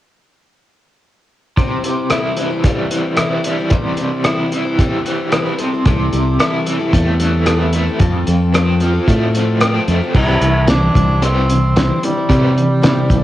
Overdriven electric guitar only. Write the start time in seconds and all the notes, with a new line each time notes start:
1.58 C3
2.11 E4
2.38 E3
2.65 G3
2.92 E3
3.18 E4
3.45 G3
3.72 C3
4.26 E4
4.53 E3
4.79 G3
5.06 E3
5.32 E4
5.60 C3
5.86 C3
6.40 E4
6.67 E3
6.93 A3
7.20 E3
7.46 E4
7.74 A3
8.00 F2
8.54 C4
8.81 F3
9.08 A3
9.34 F3
9.62 C4
9.89 A3
10.16 C3 E3 G3
10.43 C3 E3
10.70 C3 E3
10.96 C3 E3
11.23 C3 E3 G3
11.49 C3 E3
11.77 C3 E3
12.04 C3 E3
12.29 C3 E3 G3
12.56 C3 E3
12.84 C3 E3
13.09 C3 E3